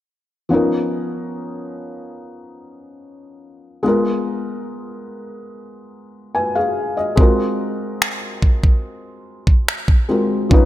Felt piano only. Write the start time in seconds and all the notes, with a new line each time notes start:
0.49 F3 B3 C#4 D#4
0.54 A#4
3.83 G#3 B3 F4
3.87 A#4
6.35 B4 G#5
6.55 G#4 F5
6.97 D#5
7.16 G#3 C4 F4 F#4
7.20 A#4
10.09 G#3 C4 F4 F#4 A#4
10.49 F3 C#4 D#4
10.54 B4